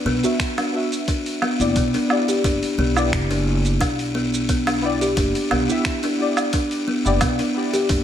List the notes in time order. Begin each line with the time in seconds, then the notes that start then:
Already playing: B3 D4 F#4 D5
0.05 B1 B3
0.23 B3 D4 F#4 E5, open hi-hat, shaker
0.40 finger snap, kick, open hi-hat, shaker
0.58 D4, open hi-hat, low woodblock, shaker
0.72 B3 D4 F#4
0.76 E5
0.92 open hi-hat, shaker
1.08 D4, kick, open hi-hat, shaker
1.26 open hi-hat, shaker
1.42 B3, low woodblock
1.59 F#1 B3 E4 G4 D5, open hi-hat, shaker
1.76 B1 B3, kick, open hi-hat, shaker
1.94 D4, open hi-hat, shaker
2.08 B3 E4 G4 D5, low woodblock
2.28 G4, open hi-hat, shaker
2.44 F#1 D4, kick, open hi-hat, shaker
2.63 open hi-hat, shaker
2.78 B1 B3
2.94 B3 E4 G4 D5, low woodblock, shaker
3.13 F#1, finger snap, kick, open hi-hat, shaker
3.31 D4, open hi-hat, shaker
3.65 open hi-hat, shaker
3.81 D4, kick, open hi-hat, low woodblock, shaker
3.99 open hi-hat, shaker
4.15 B3
4.34 shaker
4.49 B3, kick, open hi-hat, shaker
4.67 D4, open hi-hat, low woodblock, shaker
4.81 B3 E4 G4 D5
5.01 G4, open hi-hat, shaker
5.17 F#1 D4, kick, open hi-hat, shaker
5.35 open hi-hat, shaker
5.51 B1 B3, low woodblock
5.69 B3 E4 G4 E5, shaker
5.85 finger snap, kick, open hi-hat, shaker
6.03 D4, open hi-hat, shaker
6.18 B3 E4 G4
6.22 D5
6.37 open hi-hat, low woodblock, shaker
6.53 D4, kick, open hi-hat, shaker
6.71 open hi-hat, shaker
6.88 B3
7.05 F#1 B3 E4 G4 D5, shaker
7.21 B1 B3, kick, open hi-hat, low woodblock, shaker
7.39 D4, open hi-hat, shaker
7.54 B3 E4 G4
7.58 D5
7.73 G4, open hi-hat, shaker
7.89 F#1 D4, kick, open hi-hat, shaker